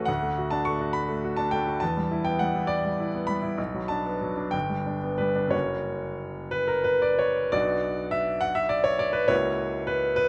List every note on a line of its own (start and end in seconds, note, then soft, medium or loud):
0.00 0.10 A3 soft
0.00 0.11 C#4 soft
0.00 0.10 F#4 soft
0.00 0.10 A4 medium
0.00 0.10 B4 medium
0.05 1.78 D2 medium
0.05 0.50 F#5 medium
0.22 0.46 A3 soft
0.38 0.61 F#4 soft
0.51 0.75 D4 soft
0.51 0.65 A5 medium
0.65 0.90 A3 soft
0.65 0.95 C#6 medium
0.81 1.23 F#4 soft
0.93 1.38 B5 medium
1.09 1.32 A3 soft
1.24 1.47 F#4 soft
1.37 1.61 D4 soft
1.37 1.52 A5 medium
1.51 1.76 A3 soft
1.51 1.80 G5 medium
1.67 1.81 F#4 soft
1.80 3.55 E2 medium
1.80 2.24 A5 medium
1.97 2.20 G3 soft
2.11 2.34 E4 soft
2.25 2.49 B3 soft
2.25 2.39 G5 medium
2.39 2.64 G3 soft
2.39 2.69 F#5 medium
2.55 2.98 E4 soft
2.67 3.27 D5 medium
2.85 3.08 G3 soft
3.00 3.23 E4 soft
3.15 3.38 B3 soft
3.27 3.53 G3 soft
3.27 3.89 B5 medium
3.42 3.58 E4 soft
3.58 4.51 B1 soft
3.74 4.00 F#3 soft
3.88 4.16 D4 soft
3.88 4.53 A5 medium
4.06 4.32 B3 soft
4.21 4.47 F#3 soft
4.37 4.54 D4 soft
4.51 5.50 G1 soft
4.51 5.18 G5 medium
4.70 4.96 G3 soft
4.86 5.13 D4 soft
5.03 5.29 B3 soft
5.18 5.47 G3 soft
5.18 5.52 B4 medium
5.36 5.53 D4 soft
5.48 7.47 F#1 soft
5.48 7.48 A#3 soft
5.48 7.48 C#4 soft
5.48 7.49 F#4 soft
5.48 7.17 C#5 medium
6.51 6.69 B4 medium
6.68 6.86 A#4 medium
6.84 7.03 B4 medium
7.02 7.20 D5 medium
7.19 7.52 C#5 medium
7.52 9.26 B1 soft
7.52 9.26 B3 soft
7.52 9.26 D4 soft
7.52 9.26 F#4 soft
7.52 8.12 D5 medium
8.11 8.42 E5 medium
8.41 8.56 F#5 medium
8.55 8.71 E5 medium
8.69 8.85 D5 medium
8.84 9.00 C#5 medium
8.99 9.15 D5 medium
9.13 9.29 B4 medium
9.28 10.29 C#2 soft
9.28 10.29 A#3 soft
9.28 10.29 E4 soft
9.28 10.29 F#4 soft
9.28 9.88 C#5 medium
9.87 10.15 B4 medium
10.16 10.29 B4 medium